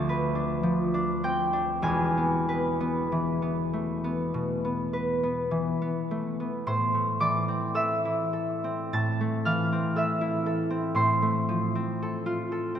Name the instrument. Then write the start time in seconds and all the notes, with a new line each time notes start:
harp
Already playing: D2 F3 D4 A5 B5 D6
0.09 B4
0.35 D4
0.63 F3
0.94 D4
1.24 C4 G5
1.53 D4
1.82 E1 E2 G#5
2.17 B3
2.49 B4
2.80 B3
3.12 E3
3.42 B3
3.73 A3
4.04 B3
4.34 B2
4.65 B3
4.93 B4
5.23 B3
5.51 E3
5.82 B3
6.11 A3
6.40 B3
6.67 A2 C5 C6
6.94 A3
7.20 E3 D5 D6
7.48 C4
7.74 A4 E5 E6
8.05 E4
8.33 A4
8.64 C4
8.93 A2 A5 A6
9.21 A3
9.45 E3 F5 F6
9.72 C4
9.96 A4 E5 E6
10.21 E4
10.46 A4
10.70 C4
10.95 A2 C5 C6
11.22 A3
11.49 F3
11.75 C4
12.02 A4
12.26 F4
12.52 A4
12.75 C4